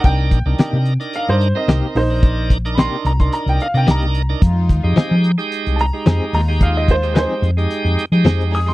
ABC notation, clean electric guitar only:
X:1
M:4/4
L:1/8
Q:"Swing 16ths" 1/4=110
K:Cm
V:1 name="Clean electric guitar"
z2 [C,B,EG] z3 [C,B,EG] z | z2 [C,B,EG] z3 [C,B,EG] z | z2 [F,CEA] z3 [F,CEA] z | z2 [F,CEA] z3 [F,CEA] z |]